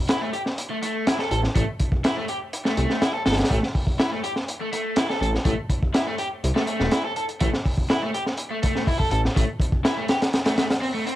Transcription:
0.09 E4, snare, closed hi-hat
0.21 A3
0.33 G4, closed hi-hat
0.46 snare
0.58 closed hi-hat
0.70 A3
0.82 A3, closed hi-hat
1.07 E4, snare, closed hi-hat
1.19 A4, snare
1.31 A1 A4, closed hi-hat
1.44 snare
1.55 A1 A3, kick, closed hi-hat
1.80 kick, closed hi-hat
1.92 kick
2.04 E4, snare, closed hi-hat
2.17 A3
2.28 G4, closed hi-hat
2.53 closed hi-hat
2.65 A3, snare
2.77 C2 A3, closed hi-hat
2.90 snare
3.02 E4, snare, closed hi-hat
3.14 A4
3.26 G1 A4, snare, closed hi-hat
3.32 snare, closed hi-hat
3.38 snare, closed hi-hat
3.44 snare, closed hi-hat
3.50 A1 A3, kick, closed hi-hat
3.63 snare
3.75 kick, open hi-hat
3.87 kick
3.99 E4, snare, closed hi-hat
4.12 A3
4.23 G4, closed hi-hat
4.36 snare
4.48 closed hi-hat
4.61 A3
4.72 A3, closed hi-hat
4.96 E4, snare, closed hi-hat
5.09 A4, snare
5.21 A1 A4, closed hi-hat
5.35 snare
5.45 A1 A3, kick, closed hi-hat
5.70 kick, closed hi-hat
5.83 kick
5.94 E4, snare, closed hi-hat
6.07 A3
6.18 G4, closed hi-hat
6.44 C2, closed hi-hat
6.55 A3, snare
6.67 A3, closed hi-hat
6.80 E1, snare
6.91 E4, snare, closed hi-hat
7.05 A4
7.16 A4, closed hi-hat
7.29 closed hi-hat
7.40 A1 A3, kick, closed hi-hat
7.53 snare
7.65 kick, open hi-hat
7.78 kick
7.90 E4, snare, closed hi-hat
8.02 A3
8.14 G4, closed hi-hat
8.26 snare
8.37 closed hi-hat
8.51 A3
8.63 A3, kick, closed hi-hat
8.76 snare
8.87 E4, kick, open hi-hat
8.99 A4, kick
9.11 A1 A4, closed hi-hat
9.25 snare
9.35 A1 A3, kick, closed hi-hat
9.60 kick, closed hi-hat
9.72 kick
9.85 E4, snare, closed hi-hat
9.97 A3
10.08 G4, snare, closed hi-hat
10.22 snare, closed hi-hat
10.33 snare, closed hi-hat
10.45 A3, snare, closed hi-hat
10.57 A3, snare, closed hi-hat
10.71 snare, closed hi-hat
10.82 C4, open hi-hat
10.94 A3
11.07 C4, closed hi-hat

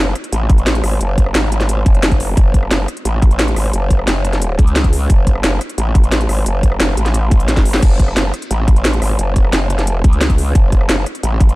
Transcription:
0.00 F#1
0.15 cross-stick, closed hi-hat
0.24 closed hi-hat
0.32 A1, closed hi-hat
0.50 kick, closed hi-hat
0.58 closed hi-hat
0.67 snare, closed hi-hat
0.75 closed hi-hat
0.84 G#1, cross-stick, open hi-hat
1.01 F#1, closed hi-hat
1.18 kick, closed hi-hat
1.26 cross-stick
1.35 G#1, snare, closed hi-hat
1.52 closed hi-hat
1.60 snare, closed hi-hat
1.69 closed hi-hat
1.86 F#1, kick, closed hi-hat
1.95 closed hi-hat
2.03 snare, closed hi-hat
2.12 kick, closed hi-hat
2.20 open hi-hat
2.37 F#1, kick, closed hi-hat
2.54 kick, closed hi-hat
2.63 cross-stick
2.71 F#1, snare, closed hi-hat
2.88 cross-stick, closed hi-hat
2.97 closed hi-hat
3.05 A1, closed hi-hat
3.22 kick, closed hi-hat
3.31 closed hi-hat
3.39 snare, closed hi-hat
3.48 closed hi-hat
3.56 G#1, cross-stick, open hi-hat
3.73 F#1, closed hi-hat
3.90 kick, closed hi-hat
3.99 cross-stick
4.08 F#1, snare, closed hi-hat
4.25 closed hi-hat
4.33 snare, closed hi-hat
4.42 closed hi-hat
4.59 C#2, kick, closed hi-hat
4.67 closed hi-hat
4.76 snare, closed hi-hat
4.84 kick, closed hi-hat
4.93 open hi-hat
5.10 F#1, kick, closed hi-hat
5.27 kick, closed hi-hat
5.35 cross-stick
5.44 F#1, snare, closed hi-hat
5.61 cross-stick, closed hi-hat
5.70 closed hi-hat
5.78 A1, closed hi-hat
5.95 kick, closed hi-hat
6.04 closed hi-hat
6.12 snare, closed hi-hat
6.21 closed hi-hat
6.29 G#1, cross-stick, open hi-hat
6.46 F#1, closed hi-hat
6.63 kick, closed hi-hat
6.72 cross-stick
6.80 F#1, snare, closed hi-hat
6.97 A1, closed hi-hat
7.06 snare, closed hi-hat
7.14 closed hi-hat
7.31 kick, closed hi-hat
7.40 closed hi-hat
7.48 snare, closed hi-hat
7.56 G#1, kick, snare, closed hi-hat
7.66 open hi-hat
7.74 snare
7.83 F#1, kick, closed hi-hat, crash
8.00 kick, closed hi-hat
8.08 cross-stick
8.17 F#1, snare, closed hi-hat
8.34 cross-stick, closed hi-hat
8.42 closed hi-hat
8.51 A1, closed hi-hat
8.68 kick, closed hi-hat
8.76 closed hi-hat
8.85 snare, closed hi-hat
8.93 closed hi-hat
9.02 G#1, cross-stick, open hi-hat
9.19 F#1, closed hi-hat
9.36 kick, closed hi-hat
9.45 cross-stick
9.53 F#1, snare, closed hi-hat
9.70 closed hi-hat
9.79 snare, closed hi-hat
9.87 closed hi-hat
10.04 C#2, kick, closed hi-hat
10.13 closed hi-hat
10.21 snare, closed hi-hat
10.30 kick, closed hi-hat
10.38 open hi-hat
10.55 F#1, kick, closed hi-hat
10.72 kick, closed hi-hat
10.81 cross-stick
10.89 F#1, snare, closed hi-hat
11.06 cross-stick, closed hi-hat
11.15 closed hi-hat
11.23 A1, closed hi-hat
11.40 kick, closed hi-hat
11.49 closed hi-hat

